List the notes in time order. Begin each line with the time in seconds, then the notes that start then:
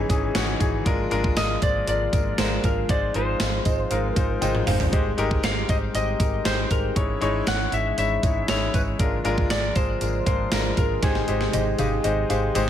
Already playing: C#3 D#3 E3 G#3 C#4 D#4 G#4
0.09 G#1 E3 C#4 D#4 G#4, kick, closed hi-hat, tambourine
0.35 G#1 E3 C#4 D#4 F#4, snare, closed hi-hat, tambourine
0.60 G#1 E3 C#4 D#4 G#4, kick, closed hi-hat, tambourine
0.85 G#1 D3 F3 G#3 A#3 D4 F4 A#4, kick, closed hi-hat, tambourine
1.11 G#1 G#3 D4 F4 A#4, closed hi-hat, tambourine
1.24 kick
1.36 G#1 G#3 D4 F4 A#4 D#5, snare, closed hi-hat, tambourine
1.62 G#1 G#3 D4 F4 C5 D5, kick, closed hi-hat, tambourine
1.87 G#1 G#3 D4 F4 A#4 D5, closed hi-hat, tambourine
2.12 G#1 G#3 D4 F4 A#4, kick, closed hi-hat, tambourine
2.38 G#1 G#3 D4 F4 A#4 C5, snare, closed hi-hat, tambourine
2.63 G#1 G#3 D4 F4 A#4, kick, closed hi-hat, tambourine
2.89 G#1 G#3 C4 D#4 F4 C5 D5, kick, closed hi-hat, tambourine
3.14 G#1 G#3 D#4 F4 C5, closed hi-hat
3.40 G#1 G#3 F4, snare, closed hi-hat, tambourine
3.65 G#1 G#3 D#4 F4 C5 D#5, kick, closed hi-hat, tambourine
3.90 G#1 G#3 D#4 F4 A#4 F5, closed hi-hat, tambourine
4.15 G#1 G#3 D#4 F4 A#4 C5, kick, closed hi-hat, tambourine
4.41 G#1 G#3 D#4 F4 C5 G5, closed hi-hat, high tom, tambourine
4.55 mid tom
4.67 G#1 G#3 D#4 F4 C5 F5, mid tom, open hi-hat, tambourine
4.80 floor tom
4.92 G#1 G3 G#3 D#4 G4 C5 D#5, kick, closed hi-hat
5.18 G#1 G#3 D#4 G4 A#4, closed hi-hat, tambourine
5.31 kick
5.43 G#1 G#3 D#4 G4 C5 F5, snare, closed hi-hat, tambourine
5.68 G#1 G#3 D#4 G4 C5 D#5, kick, closed hi-hat, tambourine
5.94 G#1 G#3 D#4 G4 C5 D#5, closed hi-hat, tambourine
6.19 G#1 G#3 D#4 G4 A#4, kick, closed hi-hat, tambourine
6.45 G#1 G#3 D#4 G4 C5, snare, closed hi-hat, tambourine
6.70 G#1 G#3 D#4 G4 A#4 C5, kick, closed hi-hat, tambourine
6.95 G#1 E3 G#3 C#4 D#4 E4 C#5, kick, closed hi-hat
7.21 G#1 G#3 D#4 E4 C#5, closed hi-hat, tambourine
7.46 G#1 G#3 D#4 E4 C#5 F#5, snare, closed hi-hat, tambourine
7.72 G#1 G#3 D#4 E4 E5, closed hi-hat, tambourine
7.97 G#1 G#3 D#4 E4 C#5 E5, closed hi-hat, tambourine
8.23 G#1 G#3 D#4 E4 C#5, kick, closed hi-hat, tambourine
8.48 G#1 G#3 D#4 E4 C#5 E5, snare, closed hi-hat, tambourine
8.74 G#1 G#3 D#4 E4 B4 C#5, kick, closed hi-hat, tambourine
8.99 G#1 D3 F3 G#3 A#3 D4 F4 A#4, kick, closed hi-hat, tambourine
9.24 G#1 G#3 D4 F4 A#4, closed hi-hat, tambourine
9.38 kick
9.50 G#1 G#3 G#4 D5, snare, closed hi-hat, tambourine
9.75 G#1 G#3 D4 F4 G#4 C5, kick, closed hi-hat, tambourine
10.01 G#1 G#3 D4 F4 A#4, closed hi-hat, tambourine
10.26 G#1 G#3 D4 F4 A#4 C5, kick, closed hi-hat, tambourine
10.51 G#1 G#3 D4 F4 A#4, snare, closed hi-hat, tambourine
10.77 G#1 G#3 D4 F4 A#4, kick, closed hi-hat, tambourine
11.02 G#1 C3 D#3 G#3 D#4 G4 G#4 C5, kick, snare, closed hi-hat, tambourine
11.15 snare
11.28 G#1 G#3 D#4 G4 C5, closed hi-hat, tambourine
11.41 snare
11.53 G#1 G#3 D#4 G4 C5 D#5, closed hi-hat, high tom, tambourine
11.78 G#1 G#3 D#4 G4 D#5 F5, closed hi-hat, high tom, tambourine
12.04 G#1 G#3 D#4 G4 C5 D#5, closed hi-hat, tambourine
12.29 G#1 G#3 D#4 G4 C5 F5, closed hi-hat, tambourine
12.55 G#1 G#3 D#4 G4 C5 D#5, closed hi-hat, tambourine